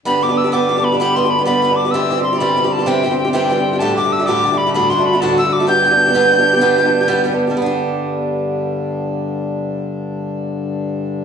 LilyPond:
<<
  \new Staff \with { instrumentName = "Tin whistle" } { \time 12/8 \key g \major \tempo 4. = 128 b''8 d'''8 e'''8 d'''4 b''8 b''8 c'''8 b''8 b''4 d'''8 | e'''4 c'''8 b''8.~ b''32 b''32 a''8 g''4 g''8 g''4. | a''8 d'''8 e'''8 d'''4 b''8 b''8 c'''8 b''8 a''8 e'''8 d'''8 | g'''1~ g'''4 r4 |
r1. | r1. | }
  \new Staff \with { instrumentName = "Steel-string acoustic guitar" } { \time 12/8 \key g \major <g b d' g'>8 <g b d' g'>16 <b d' g'>8 <b d' g'>16 <g b d' g'>8 <g b d' g'>16 <b d' g'>8 <b d' g'>16 <g b d' g'>8 <g b d' g'>16 <b d' g'>8 <b d' g'>16 <g b d' g'>8 <g b d' g'>16 <b d' g'>8 <b d' g'>16 | <c e g c' g'>8 <e g c' g'>16 <g c' g'>8 <g c' g'>16 <c e g c' g'>8 <e g c' g'>16 <g c' g'>8 <g c' g'>16 <c e g c' g'>8 <e g c' g'>16 <g c' g'>8 <g c' g'>16 <c e g c' g'>8 <e g c' g'>16 <g c' g'>8 <g c' g'>16 | <d, a, d g a g'>8 <d g a g'>16 <d g a g'>8 <d g a g'>16 <d, a, d g a g'>8 <d g a g'>16 <d g a g'>8 <d g a g'>16 <d, a, d a d' fis'>8 <d a d' fis'>16 <d a d' fis'>8 <d a d' fis'>16 <d, a, d a d' fis'>8 <d a d' fis'>16 <d a d' fis'>8 <d a d' fis'>16 | <g b d' g'>8 <g b d' g'>16 <b d' g'>8 <b d' g'>16 <g b d' g'>8 <g b d' g'>16 <b d' g'>8 <b d' g'>16 <g b d' g'>8 <g b d' g'>16 <b d' g'>8 <b d' g'>16 <g b d' g'>8 <g b d' g'>16 <b d' g'>8 <b d' g'>16 |
<g b d' g'>1.~ | <g b d' g'>1. | }
  \new Staff \with { instrumentName = "Harmonium" } { \clef bass \time 12/8 \key g \major <g, d>1.~ | <g, d>1.~ | <g, d>1.~ | <g, d>1. |
<g, d>1.~ | <g, d>1. | }
>>